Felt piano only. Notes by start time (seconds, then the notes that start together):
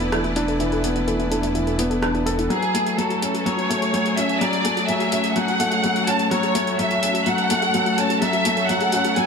Already playing: E3 B3 D4
0.12 E3
0.36 D4
0.60 E3
0.84 B3
1.07 E3
1.32 D4
1.55 E3
1.79 B3
2.03 D4
2.26 A4
2.50 F#3
2.74 A3
2.98 F#3
3.22 C#4
3.46 F#3
3.70 A3
3.94 F#3
4.17 C#4
4.41 F#3
4.65 A3
4.89 F#3
5.12 C#4
5.36 F#3
5.60 A3
5.84 F#3
6.08 C#4
6.31 F#3
6.55 A3
6.79 F#3
7.03 C#4
7.27 F#3
7.51 A3
7.75 F#3
7.99 C#4
8.22 F#3
8.46 A3
8.70 F#3
8.94 C#4
9.17 F#3